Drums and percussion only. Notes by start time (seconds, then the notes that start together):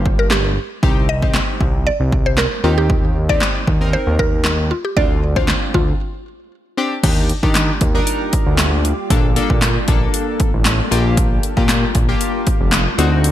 0.06 kick
0.30 snare, clap
0.83 kick
1.22 kick
1.34 snare, clap
1.61 kick
2.12 kick
2.37 snare, clap
2.90 kick
3.29 kick
3.41 snare, clap
3.67 kick
4.19 kick
4.44 snare, clap
4.97 kick
5.36 kick
5.48 snare, clap
5.74 kick
7.04 kick, closed hi-hat, crash
7.29 closed hi-hat
7.43 kick
7.55 snare, clap, closed hi-hat
7.81 kick, closed hi-hat
8.07 closed hi-hat
8.33 kick, closed hi-hat
8.58 snare, clap, closed hi-hat
8.85 closed hi-hat
9.10 kick, closed hi-hat
9.36 closed hi-hat
9.50 kick
9.62 snare, clap, closed hi-hat
9.88 kick, closed hi-hat
10.14 closed hi-hat
10.40 kick, closed hi-hat
10.65 snare, clap, closed hi-hat
10.92 closed hi-hat
11.17 kick, closed hi-hat
11.43 closed hi-hat
11.57 kick
11.69 snare, clap, closed hi-hat
11.95 kick, closed hi-hat
12.21 closed hi-hat
12.47 kick, closed hi-hat
12.72 snare, clap, closed hi-hat
12.99 closed hi-hat
13.24 closed hi-hat